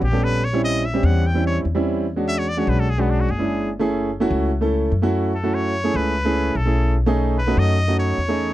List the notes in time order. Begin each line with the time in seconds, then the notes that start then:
0.02 A#1 G4
0.12 G3 B3 C#4 A4
0.24 B4
0.44 C#5
0.53 G3 C4 C#4 E4
0.65 D#5
0.85 E5
0.94 G3 C4 C#4 G4
1.03 E2 F#5
1.27 G5
1.34 G3 C4 C#4 E4
1.47 C#5
1.65 E2
1.75 G3 C4 C#4 E4
2.16 G#3 C#4 D4 F#4
2.28 E5
2.39 C#5
2.49 D5
2.57 G#3 C#4 D4 F#4 C#5
2.67 B1 B4
2.80 A4
2.90 G#4
2.98 G#3 B3 C#4 D4 F#4
3.10 D4
3.21 F#4
3.29 F#1 G#4
3.39 G#3 C#4 D4 E4
3.79 A3 C#4 E4 G#4
4.20 A3 C#4 E4 F#4
4.31 C#2
4.61 A3 C#4 E4 A4
4.92 F#2
5.02 A3 C#4 E4 F#4
5.35 A4
5.43 A3 C#4 E4 F#4
5.54 C#5
5.84 A3 C#4 E4 G#4
5.94 C#2 B4
6.25 A3 C#4 E4 G#4
6.55 B1 A4
6.65 A3 C#4 E4 G#4
7.06 A3 C#4 D#4 G#4
7.38 B4
7.47 A3 C#4 D#4 F#4
7.57 F#2 D#5
7.88 A3 C#4 D#4 F#4
7.99 C#5
8.18 E2
8.28 A3 C#4 D#4 G#4